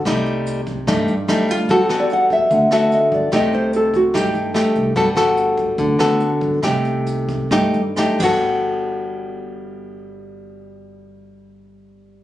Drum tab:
CC |--------|--------|--------|--------|
HH |xxxxxxxx|xxxxxxxx|xxxxxxxx|xxxxxxxx|
SD |r---r-r-|-r---r--|r---r-r-|-r---r--|
BD |o--oo---|o--oo--o|o--oo---|o--oo--o|

CC |-------x|--------|--------|
HH |xxxxxxx-|--------|--------|
SD |r---r-r-|--------|--------|
BD |o--oo--o|--------|--------|